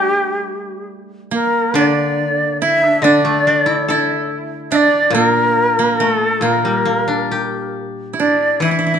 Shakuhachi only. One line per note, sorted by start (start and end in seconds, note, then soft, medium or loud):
0.00 0.87 G4 loud
1.32 1.73 A#4 medium
1.76 2.57 D5 medium
2.60 3.04 E5 loud
3.03 4.28 D5 loud
4.71 4.76 E5 loud
4.75 5.15 D5 loud
5.13 5.98 A#4 loud
5.96 6.43 A4 medium
6.42 7.73 A#4 medium
8.19 8.59 D5 medium
8.63 8.99 E5 medium